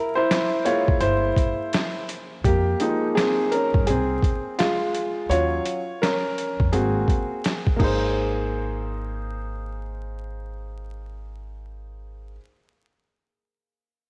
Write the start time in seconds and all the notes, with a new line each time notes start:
Already playing: E4 A#4
0.15 E4 C5
0.31 snare, closed hi-hat
0.65 G#3 A#3 E4 F4 C#5, closed hi-hat
0.88 kick
1.00 G1 E4 C5, closed hi-hat
1.36 kick, closed hi-hat
1.73 snare, closed hi-hat
2.09 closed hi-hat
2.44 F2 A#3 G4, kick, closed hi-hat
2.80 F3 G#3 A#3 D#4, closed hi-hat
3.15 C4 G#4, snare, closed hi-hat
3.52 C#4 A#4, closed hi-hat
3.74 G2, kick
3.87 C2 C4 G#4, closed hi-hat
4.22 kick, closed hi-hat
4.59 G#3 F4, snare, closed hi-hat
4.95 closed hi-hat
5.29 D#2 F#3 C#4 F4 C#5, closed hi-hat
5.65 closed hi-hat
6.02 C#4 A#4, snare, closed hi-hat
6.38 closed hi-hat
6.60 F2, kick
6.73 G#1 A#3 C4 F#4 G#4, closed hi-hat
7.08 kick, closed hi-hat
7.44 snare, closed hi-hat
7.67 kick
7.76 G#1 A#3 D#4, kick, crash
7.81 G#4 C5